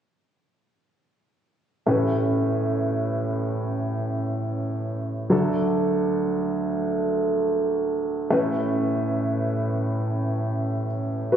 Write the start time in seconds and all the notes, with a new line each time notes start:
1.87 A1 A2 A3 C#4 B4
5.30 D2 D3 F#3 D4 A4
8.30 A1 A2 A3 C#4 B4
11.32 F#4 B4